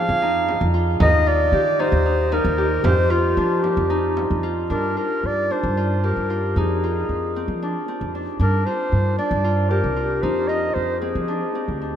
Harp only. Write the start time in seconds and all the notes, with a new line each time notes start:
Already playing: D4 F4 G#4
0.22 D#4
0.74 F4
1.00 D#4
1.26 F4
1.53 G4
1.79 D#4
2.06 D#4
2.32 D#4
2.58 G4
2.84 G4
3.10 F4
3.37 D4
3.90 D#4
4.43 F4
4.70 D4
4.97 F4
5.51 D4
5.77 F4
6.04 G4
6.30 F4
6.57 D#4
6.84 F4
7.36 C4
7.62 D4
7.88 C4
8.15 D4
8.40 D4
8.67 F4
9.18 D4
9.44 F4
9.71 G4
9.96 F4
10.23 D#4
10.49 F4
11.02 C4
11.28 D4
11.55 C4
11.81 D4